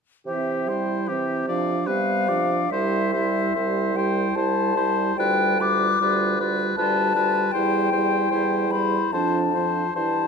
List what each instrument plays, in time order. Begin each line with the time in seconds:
0.26 bassoon C3, french horn E3, clarinet C4, oboe G4, flute E5
0.68 french horn G3, clarinet E4, oboe C5, flute G5
1.08 bassoon C3, french horn E3, clarinet C4, oboe G4, flute E5
1.47 french horn F3, clarinet D4, oboe D5, flute F5
1.87 bassoon C3, french horn G3, clarinet B3, oboe B4, flute F5
2.29 french horn F3, clarinet D4, oboe D5
2.70 bassoon C2, french horn G3, clarinet E4, oboe C5, flute E5
3.13 french horn G3, clarinet E4, oboe C5
3.55 bassoon C2, french horn G3, clarinet E4, oboe C5
3.95 french horn G3, clarinet E4, oboe C5, flute G5
4.35 bassoon C2, french horn G3, clarinet E4, oboe C5, flute A5
4.75 french horn G3, clarinet E4, oboe C5
5.16 bassoon D2, french horn G3, clarinet F4, oboe B4, flute G5
5.60 french horn G3, clarinet F4, oboe B4, flute D6
6.00 bassoon D2, french horn G3, clarinet F4, oboe B4
6.39 french horn G3, clarinet F4, oboe B4
6.77 bassoon D2, french horn G3, clarinet F4, oboe B4, flute A5
7.15 french horn G3, clarinet F4, oboe B4
7.52 bassoon E2, french horn G3, clarinet E4, oboe C5, flute G5
7.92 french horn G3, clarinet E4, oboe C5
8.31 bassoon E2, french horn G3, clarinet E4, oboe C5
8.70 french horn G3, clarinet E4, oboe C5, flute B5
9.12 bassoon F2, french horn F3, clarinet D4, oboe C5, flute A5
9.53 french horn F3, clarinet D4, oboe C5
9.93 bassoon G2, french horn E3, clarinet E4, oboe C5, flute A5